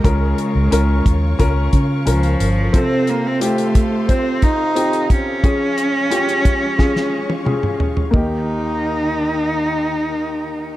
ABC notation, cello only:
X:1
M:4/4
L:1/16
Q:1/4=89
K:Ebmix
V:1 name="Cello"
A,8- A,2 z2 F,4 | C2 B, C =A,4 C2 E4 D2- | D12- D2 z2 | E16 |]